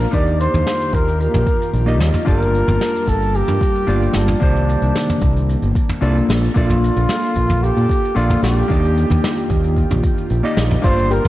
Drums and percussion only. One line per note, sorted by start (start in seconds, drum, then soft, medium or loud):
0.00 shaker medium
0.13 kick loud
0.13 shaker medium
0.27 shaker soft
0.40 shaker medium
0.54 mid tom medium
0.54 shaker medium
0.67 snare medium
0.67 shaker medium
0.82 shaker soft
0.93 kick loud
0.93 shaker medium
1.08 shaker medium
1.20 shaker medium
1.34 mid tom medium
1.34 shaker soft
1.46 kick loud
1.46 shaker medium
1.62 shaker medium
1.74 shaker medium
1.88 shaker soft
2.00 snare medium
2.00 shaker medium
2.14 mid tom medium
2.14 shaker medium
2.27 kick loud
2.27 shaker medium
2.42 shaker soft
2.55 shaker medium
2.68 mid tom medium
2.68 shaker medium
2.81 snare medium
2.81 shaker medium
2.96 shaker soft
3.07 kick medium
3.07 shaker medium
3.22 shaker medium
3.35 shaker medium
3.48 mid tom medium
3.48 shaker soft
3.61 kick loud
3.61 shaker medium
3.75 shaker soft
3.89 shaker medium
4.02 shaker soft
4.13 snare medium
4.13 shaker medium
4.28 mid tom medium
4.28 shaker soft
4.41 kick loud
4.41 shaker medium
4.56 shaker soft
4.69 shaker medium
4.83 shaker medium
4.96 snare medium
4.96 shaker medium
5.09 mid tom medium
5.09 shaker soft
5.22 kick loud
5.22 shaker medium
5.37 shaker medium
5.49 shaker medium
5.63 shaker soft
5.75 kick medium
5.75 shaker medium
5.89 mid tom medium
5.89 shaker medium
6.03 shaker medium
6.18 shaker soft
6.30 snare medium
6.30 shaker medium
6.44 shaker medium
6.56 kick loud
6.56 shaker medium
6.70 mid tom medium
6.70 shaker soft
6.84 shaker medium
6.97 shaker medium
7.09 snare medium
7.09 shaker medium
7.25 shaker soft
7.36 kick medium
7.36 shaker medium
7.50 mid tom medium
7.50 shaker soft
7.64 shaker medium
7.77 shaker soft
7.89 kick medium
7.89 shaker medium
8.05 shaker soft
8.18 shaker medium
8.30 mid tom medium
8.30 shaker soft
8.44 snare medium
8.44 shaker medium
8.57 shaker soft
8.70 kick loud
8.70 shaker medium
8.85 shaker soft
8.98 shaker medium
9.10 mid tom medium
9.10 shaker medium
9.24 snare medium
9.24 shaker medium
9.38 shaker soft
9.50 kick medium
9.50 shaker medium
9.64 shaker medium
9.77 kick medium
9.77 shaker medium
9.90 mid tom medium
9.90 shaker soft
10.03 kick medium
10.03 shaker medium
10.18 shaker soft
10.30 shaker medium
10.46 shaker soft
10.57 snare medium
10.57 shaker medium
10.70 mid tom medium
10.70 shaker medium
10.83 kick loud
10.83 closed hi-hat medium
10.83 crash loud
10.83 shaker medium
10.98 shaker soft
11.11 shaker medium
11.25 closed hi-hat medium
11.25 mid tom medium